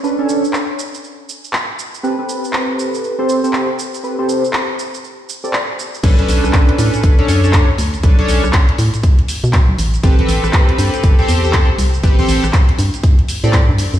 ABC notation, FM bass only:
X:1
M:4/4
L:1/16
Q:"Swing 16ths" 1/4=120
K:Bphr
V:1 name="FM bass" clef=bass
z16 | z16 | z16 | B,,, B,,, B,,, B,,, z2 A,, z A,,, z F,,3 z D,, z |
B,,, B,,, B,,, B,,, z2 A,, z4 B,, z B,,, A,,, z | A,,, A,,, A,,, A,,, z2 G,, z G,,, z E,,3 z C,, z | A,,, A,,, A,,, A,,, z2 G,, z4 A,, z G,, z F,, |]